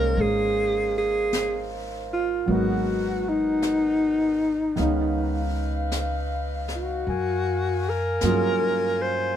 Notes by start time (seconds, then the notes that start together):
Already playing: C2 F3 G#3 A#3 C4 C#4 D#4 A#4 C5 F5
0.17 G#1, brush sweep
0.21 G#4
0.98 G#4
1.33 brush sweep, snare, hi-hat pedal
2.13 F4
2.46 G#1 B2 F#3 G#3 A#3 B3 F#5, brush sweep
2.52 D#4 F#4
3.29 D#4
3.62 brush sweep, snare, hi-hat pedal
4.76 C#2 D#3 G#3 B3 C#4 D#4 B4 F5, brush sweep, snare
4.80 D#4
5.92 brush sweep, snare, hi-hat pedal
6.68 snare
6.76 F#4
7.06 F#2 A#4 F5 G#5, brush sweep
7.89 A#4
8.21 G2 F#3 A#3 C#4 F4 G#4, brush sweep, snare, hi-hat pedal
9.02 C5